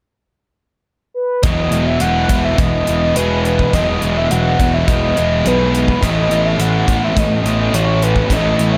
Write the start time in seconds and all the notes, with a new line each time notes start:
1.14 B4
1.43 E1 E2 B2 E3 F#3 G#3 B3 E4 D#5, kick, closed hi-hat
1.71 E1 E3 G#3 B3 E4, closed hi-hat
1.87 E5
2.00 E1 E2 B2 E3 F#3 G#3 B3 E4 F#5, closed hi-hat
2.29 E1 B2 E3 G#3 B3 E4, kick, closed hi-hat
2.45 E5
2.57 E1 E2 B2 E3 D#5, kick, closed hi-hat
2.86 E1 B2 E3 G#3 B3 E4, closed hi-hat
3.15 E1 E2 B2 E3 G#3 B3 E4 G#4 B4, closed hi-hat
3.45 B4, closed hi-hat
3.59 kick
3.72 E1 E2 B2 E3 F#3 G#3 B3 E4 D#5, kick, closed hi-hat
4.01 E1 E3 G#3 B3 E4, closed hi-hat
4.17 E5
4.30 E1 E2 B2 E3 F#3 G#3 B3 E4 F#5, closed hi-hat
4.59 E1 B2 E3 G#3 B3 E4, kick, closed hi-hat
4.74 E5
4.87 E1 E2 B2 E3 D#5, kick, closed hi-hat
5.17 E1 B2 E3 G#3 B3 E4, closed hi-hat
5.45 B1 E2 B2 E3 G#3 B3 E4 G#4 B4, closed hi-hat
5.74 D#4 B4, closed hi-hat
5.88 kick
6.02 A1 A2 E3 A3 C#4 E4 D#5, kick, closed hi-hat
6.30 A1 A3 B3 C#4 E4, closed hi-hat
6.46 E5
6.58 A1 A2 E3 A3 C#4 E4 F#5, closed hi-hat
6.87 A1 E3 A3 B3 C#4 E4, kick, closed hi-hat
7.04 E5
7.16 A1 A2 E3 A3 C#4 D#5, kick, closed hi-hat
7.44 A1 A3 B3 C#4 E4, closed hi-hat
7.48 E3
7.72 A1 A2 E3 A3 C#4 E4 F#4 C#5, closed hi-hat
8.02 C#4 B4, closed hi-hat
8.16 kick
8.29 A1 A2 E3 A3 C#4 E4 D#5, kick, closed hi-hat
8.57 A1 A3 B3 C#4 E4, closed hi-hat
8.74 E5